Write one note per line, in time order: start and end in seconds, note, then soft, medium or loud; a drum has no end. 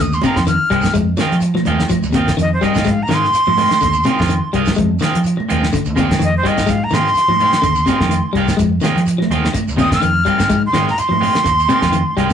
0.00 0.18 D#2 medium
0.00 0.16 D3 medium
0.00 0.16 D#6 medium
0.00 kick medium
0.00 closed hi-hat medium
0.00 shekere medium
0.13 0.23 C6 medium
0.13 shekere medium
0.22 0.40 C3 medium
0.22 0.38 D#3 medium
0.22 0.38 G#3 medium
0.22 0.39 C4 medium
0.22 0.39 F4 medium
0.22 kick medium
0.22 closed hi-hat medium
0.22 high conga medium
0.22 claves medium
0.22 shekere medium
0.26 0.38 A#5 medium
0.36 0.55 F2 medium
0.36 0.46 C6 medium
0.36 kick medium
0.36 snare medium
0.36 shekere soft
0.46 0.64 D#3 medium
0.46 0.94 F6 medium
0.46 closed hi-hat medium
0.46 shekere medium
0.70 0.81 C2 medium
0.70 0.86 D#3 medium
0.70 0.87 G3 medium
0.70 0.86 G#3 medium
0.70 0.86 C4 medium
0.70 muted clean electric guitar stroke medium
0.70 kick medium
0.70 closed hi-hat medium
0.70 claves medium
0.70 shekere soft
0.82 kick medium
0.82 snare medium
0.82 closed hi-hat medium
0.82 high conga medium
0.82 shekere medium
0.94 1.14 F2 loud
0.94 1.11 G#3 medium
0.94 kick medium
0.94 closed hi-hat medium
0.94 low conga medium
0.94 shekere medium
1.17 1.35 D#3 medium
1.17 1.34 D#3 medium
1.17 1.34 G#3 medium
1.17 1.35 C4 medium
1.17 1.35 F4 medium
1.17 snare medium
1.17 closed hi-hat medium
1.17 high conga medium
1.17 claves medium
1.17 shekere medium
1.31 1.51 F3 medium
1.31 closed hi-hat medium
1.31 shekere soft
1.40 closed hi-hat medium
1.40 shekere medium
1.54 1.72 F3 medium
1.54 snare soft
1.54 high conga medium
1.54 claves medium
1.65 1.85 D#2 loud
1.65 1.82 D#3 medium
1.65 1.82 G#3 medium
1.65 1.82 C4 medium
1.65 1.82 F4 medium
1.65 closed hi-hat medium
1.65 high conga medium
1.65 low conga medium
1.65 shekere soft
1.79 snare medium
1.79 low conga medium
1.89 2.07 F3 medium
1.89 kick medium
1.89 closed hi-hat medium
1.89 high conga medium
1.89 claves medium
1.89 shekere medium
2.02 2.30 D#2 loud
2.02 shekere medium
2.12 2.30 C3 medium
2.12 2.30 D#3 medium
2.12 2.30 C4 medium
2.12 muted clean electric guitar stroke medium
2.12 kick medium
2.12 snare soft
2.12 closed hi-hat medium
2.12 high conga medium
2.12 claves medium
2.12 shekere medium
2.16 2.31 F4 medium
2.27 kick medium
2.27 snare medium
2.27 closed hi-hat medium
2.27 shekere soft
2.37 2.57 F2 medium
2.37 2.54 D#3 loud
2.37 closed hi-hat medium
2.37 shekere medium
2.41 2.52 D#5 loud
2.54 2.66 C5 medium
2.61 2.75 D#3 medium
2.61 2.78 G3 medium
2.61 2.75 G#3 medium
2.61 2.75 C4 medium
2.61 2.74 F4 medium
2.61 2.92 D#5 medium
2.61 kick medium
2.61 snare soft
2.61 closed hi-hat soft
2.61 claves medium
2.61 shekere soft
2.74 3.03 G#2 medium
2.74 2.89 G#3 soft
2.74 2.89 C4 soft
2.74 2.88 F4 medium
2.74 kick medium
2.74 snare medium
2.74 closed hi-hat medium
2.74 high conga medium
2.74 shekere medium
2.84 3.02 G#3 medium
2.84 kick medium
2.84 snare soft
2.84 closed hi-hat medium
2.84 low conga loud
2.84 shekere medium
2.91 3.04 F5 medium
3.03 3.16 A#5 medium
3.07 3.29 G#2 medium
3.07 3.26 D#3 medium
3.07 3.25 D#3 medium
3.07 3.25 G#3 medium
3.07 3.25 F4 medium
3.07 muted clean electric guitar stroke medium
3.07 snare medium
3.07 closed hi-hat medium
3.07 high conga medium
3.07 claves medium
3.07 shekere medium
3.14 4.51 C6 loud
3.23 snare soft
3.23 shekere soft
3.33 muted fingered electric bass stroke soft
3.33 snare soft
3.33 closed hi-hat medium
3.33 shekere loud
3.47 3.66 G#2 medium
3.47 3.64 F3 medium
3.47 high conga medium
3.47 claves medium
3.57 3.73 D#3 medium
3.57 3.73 G#3 medium
3.57 3.73 C4 medium
3.57 3.73 F4 medium
3.57 open hi-hat medium
3.57 high conga medium
3.57 low conga medium
3.57 shekere soft
3.70 snare medium
3.70 closed hi-hat medium
3.70 low conga medium
3.80 4.01 D#2 medium
3.80 3.98 D3 medium
3.80 kick medium
3.80 snare soft
3.80 closed hi-hat medium
3.80 claves medium
3.80 shekere medium
3.93 shekere medium
4.03 4.22 C3 medium
4.03 4.19 D#3 medium
4.03 4.19 G#3 medium
4.03 4.19 C4 medium
4.03 4.19 F4 medium
4.03 snare soft
4.03 closed hi-hat medium
4.03 high conga medium
4.03 claves medium
4.03 shekere medium
4.18 4.39 F2 medium
4.18 4.33 G#3 soft
4.18 4.33 C4 medium
4.18 4.32 F4 medium
4.18 kick medium
4.18 snare medium
4.18 shekere soft
4.27 4.46 D#3 medium
4.27 closed hi-hat medium
4.27 shekere medium
4.53 4.65 C2 medium
4.53 4.69 D#3 medium
4.53 4.70 G3 medium
4.53 4.69 G#3 medium
4.53 4.70 F4 medium
4.53 kick medium
4.53 closed hi-hat medium
4.53 claves medium
4.53 shekere soft
4.65 muted fingered electric bass stroke soft
4.65 kick medium
4.65 snare medium
4.65 closed hi-hat medium
4.65 high conga medium
4.65 shekere medium
4.75 4.94 G#3 medium
4.75 kick medium
4.75 closed hi-hat medium
4.75 shekere medium
4.79 4.97 F2 medium
4.79 low conga loud
4.99 5.18 D#3 medium
4.99 5.17 D#3 medium
4.99 5.17 G#3 medium
4.99 5.17 C4 medium
4.99 high conga medium
4.99 claves medium
4.99 shekere medium
5.03 5.17 F4 medium
5.03 snare medium
5.03 closed hi-hat medium
5.12 5.34 F3 medium
5.12 closed hi-hat medium
5.12 shekere soft
5.24 closed hi-hat medium
5.24 shekere medium
5.37 muted clean electric guitar stroke medium
5.37 high conga medium
5.37 claves medium
5.49 5.69 D#2 loud
5.49 5.64 D#3 medium
5.49 5.64 G#3 medium
5.49 5.64 C4 medium
5.49 5.65 F4 medium
5.49 closed hi-hat medium
5.49 high conga medium
5.49 low conga medium
5.49 shekere soft
5.63 snare medium
5.72 5.90 D3 medium
5.72 kick medium
5.72 snare soft
5.72 closed hi-hat medium
5.72 claves medium
5.72 shekere medium
5.85 6.14 D#2 loud
5.85 shekere medium
5.95 6.14 C3 medium
5.95 6.09 D#3 medium
5.95 6.10 G#3 medium
5.95 6.10 C4 medium
5.95 6.10 F4 medium
5.95 kick medium
5.95 closed hi-hat medium
5.95 high conga loud
5.95 claves medium
5.95 shekere medium
6.11 6.24 G#3 soft
6.11 6.24 C4 soft
6.11 muted clean electric guitar stroke soft
6.11 kick medium
6.11 snare medium
6.11 closed hi-hat medium
6.11 high conga medium
6.11 shekere soft
6.20 6.39 F2 medium
6.20 6.37 D#3 medium
6.20 closed hi-hat medium
6.20 shekere medium
6.24 6.35 D#5 loud
6.37 6.49 C5 medium
6.43 6.58 D#3 medium
6.43 6.61 G3 medium
6.43 6.58 G#3 medium
6.43 6.57 C4 medium
6.43 6.57 F4 medium
6.43 kick medium
6.43 snare soft
6.43 closed hi-hat soft
6.43 claves medium
6.43 shekere soft
6.48 6.71 D#5 medium
6.58 6.86 G#2 medium
6.58 6.72 G#3 soft
6.58 6.71 C4 soft
6.58 6.71 F4 medium
6.58 kick medium
6.58 snare medium
6.58 closed hi-hat soft
6.58 shekere medium
6.66 6.84 G#3 medium
6.66 6.85 F5 loud
6.66 kick loud
6.66 snare soft
6.66 closed hi-hat medium
6.66 low conga medium
6.66 shekere medium
6.84 6.95 A#5 loud
6.90 7.11 G#2 medium
6.90 7.08 D#3 medium
6.90 7.08 G#3 medium
6.90 7.08 C4 medium
6.90 7.08 F4 medium
6.90 8.32 C6 loud
6.90 snare medium
6.90 closed hi-hat soft
6.90 high conga medium
6.90 claves medium
6.90 shekere medium
7.04 snare soft
7.04 shekere soft
7.14 muted fingered electric bass stroke soft
7.14 snare soft
7.14 closed hi-hat medium
7.14 shekere medium
7.28 7.48 G#2 medium
7.28 7.46 F3 medium
7.28 high conga medium
7.28 claves medium
7.39 7.55 D#3 medium
7.39 7.56 G#3 medium
7.39 7.56 C4 medium
7.39 7.56 F4 medium
7.39 closed hi-hat soft
7.39 high conga medium
7.39 low conga medium
7.39 shekere soft
7.53 snare medium
7.53 closed hi-hat medium
7.62 7.83 D#2 medium
7.62 7.80 D3 medium
7.62 kick medium
7.62 closed hi-hat medium
7.62 claves medium
7.62 shekere medium
7.75 shekere medium
7.86 8.04 C3 medium
7.86 8.01 D#3 medium
7.86 8.00 G#3 medium
7.86 8.00 C4 medium
7.86 7.99 F4 medium
7.86 kick medium
7.86 snare soft
7.86 closed hi-hat medium
7.86 high conga medium
7.86 claves medium
7.86 shekere medium
8.01 8.20 F2 medium
8.01 8.15 G#3 soft
8.01 8.14 C4 medium
8.01 8.14 F4 medium
8.01 kick medium
8.01 snare medium
8.01 high conga medium
8.01 shekere soft
8.09 8.27 D#3 medium
8.09 closed hi-hat medium
8.09 shekere medium
8.33 8.46 C2 medium
8.33 8.51 D#3 medium
8.33 8.51 G3 medium
8.33 8.51 G#3 medium
8.33 kick medium
8.33 closed hi-hat soft
8.33 claves medium
8.33 shekere soft
8.37 8.52 C4 medium
8.37 8.52 F4 medium
8.48 muted fingered electric bass stroke soft
8.48 kick medium
8.48 snare medium
8.48 closed hi-hat medium
8.48 shekere medium
8.57 8.78 F2 medium
8.57 8.75 G#3 medium
8.57 kick loud
8.57 closed hi-hat medium
8.57 low conga medium
8.57 shekere medium
8.81 8.99 D#3 medium
8.81 8.98 D#3 medium
8.81 8.99 G#3 medium
8.81 8.99 C4 medium
8.81 8.99 F4 medium
8.81 muted fingered electric bass stroke soft
8.81 snare medium
8.81 closed hi-hat medium
8.81 claves medium
8.81 shekere medium
8.85 high conga loud
8.95 9.15 F3 medium
8.95 closed hi-hat medium
8.95 shekere soft
9.06 closed hi-hat medium
9.06 shekere medium
9.18 9.36 F3 medium
9.18 snare soft
9.18 high conga medium
9.18 claves medium
9.30 9.49 D#2 loud
9.30 9.46 D#3 medium
9.30 9.46 G#3 medium
9.30 9.46 C4 medium
9.30 9.47 F4 medium
9.30 closed hi-hat medium
9.30 high conga medium
9.30 low conga medium
9.30 shekere soft
9.45 snare medium
9.45 low conga medium
9.53 muted clean electric guitar stroke medium
9.53 muted fingered electric bass stroke soft
9.53 kick medium
9.53 closed hi-hat medium
9.53 high conga medium
9.53 claves medium
9.53 shekere medium
9.68 9.96 D#2 medium
9.68 shekere medium
9.77 9.95 C3 medium
9.77 9.91 D#3 medium
9.77 9.90 G#3 medium
9.77 9.90 C4 medium
9.77 9.89 F4 medium
9.77 9.92 D#6 loud
9.77 kick medium
9.77 closed hi-hat medium
9.77 high conga loud
9.77 claves medium
9.77 shekere medium
9.90 10.05 G#3 soft
9.90 10.05 C4 soft
9.90 10.04 F4 medium
9.90 10.62 F6 loud
9.90 kick medium
9.90 snare medium
9.90 closed hi-hat medium
9.90 high conga medium
9.90 shekere soft
10.01 10.22 F2 loud
10.01 10.19 D#3 medium
10.01 closed hi-hat medium
10.01 shekere medium
10.25 10.39 D#3 medium
10.25 10.43 G3 medium
10.25 10.38 G#3 medium
10.25 10.38 C4 medium
10.25 10.37 F4 medium
10.25 kick medium
10.25 closed hi-hat soft
10.25 claves medium
10.25 shekere soft
10.38 10.68 G#2 medium
10.38 10.53 G#3 soft
10.38 10.52 C4 soft
10.38 10.52 F4 soft
10.38 kick medium
10.38 snare medium
10.38 closed hi-hat medium
10.38 high conga medium
10.38 shekere medium
10.49 10.67 G#3 medium
10.49 kick medium
10.49 closed hi-hat medium
10.49 low conga medium
10.49 shekere medium
10.66 10.88 C6 loud
10.73 10.93 G#2 loud
10.73 10.89 D#3 medium
10.73 10.91 D#3 medium
10.73 10.89 G#3 medium
10.73 10.89 C4 medium
10.73 10.90 F4 medium
10.73 snare medium
10.73 closed hi-hat soft
10.73 high conga medium
10.73 claves medium
10.73 shekere medium
10.88 11.01 A#5 loud
10.88 snare soft
10.88 shekere soft
10.97 12.33 C6 loud
10.97 muted fingered electric bass stroke soft
10.97 closed hi-hat medium
10.97 shekere medium
11.09 11.30 G#2 medium
11.09 11.27 F3 medium
11.09 high conga medium
11.09 claves medium
11.20 11.36 D#3 medium
11.20 11.36 G#3 medium
11.20 11.37 C4 medium
11.20 11.37 F4 medium
11.20 open hi-hat medium
11.20 high conga medium
11.20 low conga medium
11.20 shekere soft
11.35 snare medium
11.35 closed hi-hat medium
11.35 low conga medium
11.44 11.65 D#2 medium
11.44 muted clean electric guitar stroke medium
11.44 kick medium
11.44 snare soft
11.44 closed hi-hat medium
11.44 claves medium
11.44 shekere medium
11.59 shekere medium
11.68 11.86 C3 medium
11.68 11.82 D#3 medium
11.68 11.82 G#3 medium
11.68 11.82 C4 medium
11.68 11.81 F4 medium
11.68 closed hi-hat medium
11.68 high conga medium
11.68 claves medium
11.68 shekere medium
11.81 12.02 F2 medium
11.81 11.96 G#3 soft
11.81 11.96 C4 soft
11.81 11.96 F4 medium
11.81 kick medium
11.81 snare medium
11.81 high conga medium
11.81 shekere soft
11.92 12.10 D#3 medium
11.92 closed hi-hat medium
11.92 shekere medium
12.17 12.28 C2 medium
12.17 12.32 D#3 medium
12.17 12.33 G3 medium
12.17 12.33 G#3 medium
12.17 12.33 C4 medium
12.17 12.33 F4 medium
12.17 kick medium
12.17 snare soft
12.17 closed hi-hat soft
12.17 claves medium
12.17 shekere soft
12.30 shekere medium